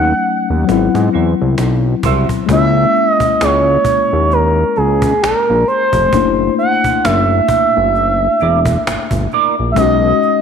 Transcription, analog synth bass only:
Already playing: D#2
0.50 D#2
0.69 G#1
0.95 G#2
1.15 E2
1.42 C2
1.60 B1
2.06 C2
2.50 C#2
3.42 C#2
4.13 D#2
4.78 C#2
5.24 A#1
5.50 A#1
5.94 F1
6.14 F#1
7.05 F#1
7.77 F#1
8.42 E1
8.89 G1
9.12 G1
9.59 A#1
9.78 B1

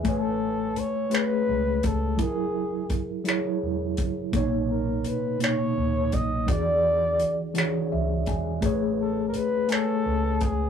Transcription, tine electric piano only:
0.04 A3 B4 G#5
0.08 C#5
1.10 A3 G#4 B4
1.15 C#5
2.17 F#3 E4 G#4
2.22 A#4
3.24 F#3 E4 G#4
3.29 C#5
4.32 B2 A#3 D#4
4.36 C#5
5.39 B2 A#3 D#4
5.44 C#5
6.47 E3 D4 F#4 G#4
6.52 D5
7.54 E3 D4 F#4 G#4
7.59 C#5
7.92 E5
8.28 G#5
8.61 A3 G#4 B4
8.66 C#5
9.68 A3 B4 G#5
9.73 C#5

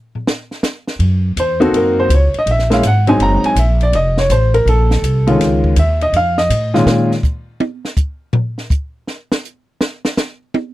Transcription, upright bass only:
0.99 F#2
1.36 E2
1.72 F#2
2.09 C#2
2.34 muted upright bass stroke
2.46 A#1
2.83 G#1
3.19 F#1
3.43 muted upright bass stroke
3.55 A#1
3.93 F1
4.29 A1
4.66 A#1
5.02 C2
5.39 C#2
5.76 D#2
6.12 F2
6.50 A2
6.86 A#2

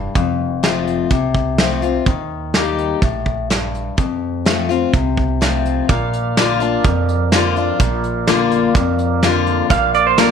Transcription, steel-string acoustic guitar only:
Already playing: G2
0.16 F2
0.63 F3 A3 C4 F4
1.11 C3
1.59 F3 A3 C4 F4
1.82 C4 F4
2.07 D#3
2.55 G3 A#3 D#4 G4
3.03 A2
3.50 G2
3.98 F2
4.45 F3 A3 C4 F4
4.69 C4 F4
4.94 C3
5.41 F3 A3 C4 F4
5.89 A#2
6.37 D3 A#3 D4 F4
6.60 D4 F4
6.85 F2
7.32 D3 A#3 D4 F4
7.57 D4 F4
7.80 A#2
8.28 D3 A#3 D4 F4
8.76 F2
9.23 D3 A#3 D4 F4
9.71 A#2
10.18 D3 A#3 D4 F4

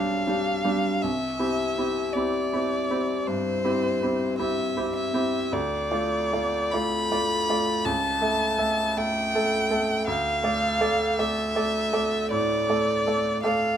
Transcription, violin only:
Already playing: F5
1.02 E5
2.13 D5
3.27 C5
4.39 E5
4.96 E5
5.53 D5
6.72 B5
7.85 A5
8.97 G5
10.08 F5
11.20 E5
12.31 D5
13.43 F5

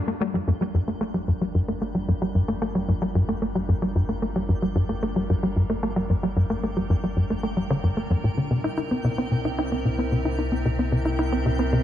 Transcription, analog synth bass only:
0.07 A#3
0.21 A#3
0.34 G3
0.47 G2
0.61 G3
0.74 G2
0.88 A#3
1.01 A#3
1.14 G3
1.28 G2
1.41 G3
1.55 G2
1.68 A#3
1.82 A#3
1.95 G3
2.08 G2
2.22 G3
2.35 G2
2.48 A#3
2.62 A#3
2.75 G3
2.88 G2
3.02 G3
3.15 G2
3.29 A#3
3.42 A#3
3.55 G3
3.69 G2
3.82 G3
3.96 G2
4.09 A#3
4.22 A#3
4.36 G3
4.49 G2
4.62 G3
4.75 G2
4.89 A#3
5.03 A#3
5.16 G3
5.30 G2
5.43 G3
5.56 G2
5.70 A#3
5.83 A#3
5.96 G3
6.10 G2
6.23 G3
6.36 G2
6.50 A#3
6.63 A#3
6.77 G3
6.90 G2
7.04 G3
7.17 G2
7.30 A#3
7.43 A#3
7.57 G3
7.70 D3
7.84 G2
7.97 A#3
8.10 G2
8.24 A#2
8.37 D3
8.51 C3
8.64 E4
8.77 E4
8.91 C4
9.04 C3
9.18 C4
9.32 C3
9.45 E4
9.58 E4
9.72 C4
9.85 C3
9.98 C4
10.12 C3
10.25 E4
10.39 E4
10.52 C4
10.65 C3
10.79 C4
10.92 C3
11.05 E4
11.19 E4
11.32 C4
11.46 C3
11.59 C4
11.73 C3

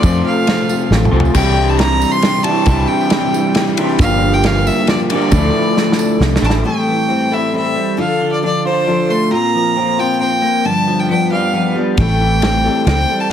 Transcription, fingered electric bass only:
0.03 F2
0.90 A1
1.12 C2
1.34 C2
2.67 C2
3.99 G1
5.32 D2
6.20 C2
6.42 A1
11.98 A1
12.86 C#2

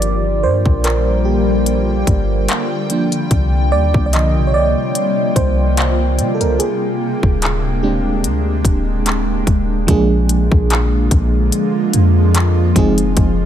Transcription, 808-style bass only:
Already playing: G1
0.44 G2
0.66 A#1
2.07 G1
3.31 C2
3.73 D#2
3.94 C2
4.36 A#1
4.55 C2
5.36 C2
6.19 C3
6.41 C2
7.23 D1
8.24 D2
8.65 D1
9.47 D1
9.88 A#1
10.52 A#1
11.11 A#1
11.94 F2
12.76 F1
13.17 F1

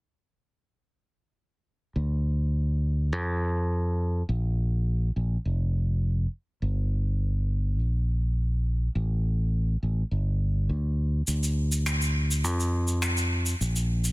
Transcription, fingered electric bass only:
1.96 D2
3.12 F2
4.29 A#1
5.16 A#1
5.45 F1
6.62 G1
7.79 A#1
8.95 A1
9.83 A1
10.11 G1
10.69 D2
11.28 D2
12.44 F2
13.61 A#1

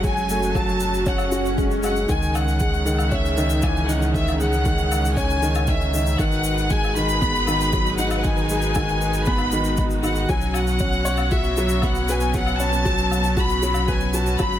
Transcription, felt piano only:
Already playing: F#3 G#3 A3 C#4 F#4
0.04 F#3
0.30 A3
0.55 F#3
1.06 C#4
1.32 F#4
1.57 G#3
1.82 G#3
2.09 D#3
2.60 G#3
2.85 D#3
3.12 C#4
3.37 D#3
3.63 E3
3.88 D#4
4.15 D#3
4.40 G#3
4.66 D#3
5.17 C#4
5.42 D#3
5.68 D#4
5.94 D#3
6.19 D#3
6.71 G#3
6.96 D#3
7.22 B3
7.48 D#3
7.73 F#3
7.99 D#4
8.25 D#3
8.50 G#3
8.76 D#3
9.27 B3
9.53 D#3
9.78 D#4
10.03 D#3
10.29 F#3
10.80 C#4
11.05 C#5
11.32 F#4
11.58 F#3
11.84 B3
12.09 B4
12.34 F#3
12.60 C#4
12.85 F#3
13.37 F#4
13.62 F#3
13.88 B4
14.14 F#3
14.40 F#3

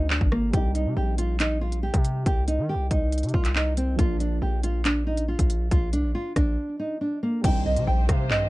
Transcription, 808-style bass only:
Already playing: D2
0.21 G#1
0.53 C2
0.86 C3
0.97 A#1
1.94 C3
2.26 C2
2.59 D#3
2.75 C2
2.91 C2
3.23 C3
3.34 C2
3.99 A#1
4.42 A#1
5.39 A#1
5.71 A#1
5.93 C2
6.04 A#1
6.36 A#1
7.44 C2
7.76 C3
7.87 A#1
8.09 C3
8.30 G2

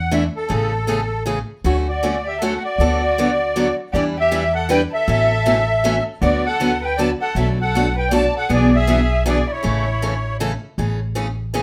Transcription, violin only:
1.66 F#4
1.88 F#4
2.27 G4
2.41 A4
2.62 F#4
3.93 G4
4.17 G4
4.55 A4
4.70 B4
4.91 A4
6.22 F#4
6.45 A4
6.83 B4
6.97 D5
7.21 A4
7.38 A4
7.60 A4
7.97 B4
8.11 D5
8.37 A4
8.51 G#4
8.73 G#4
9.28 G#4
9.51 E4

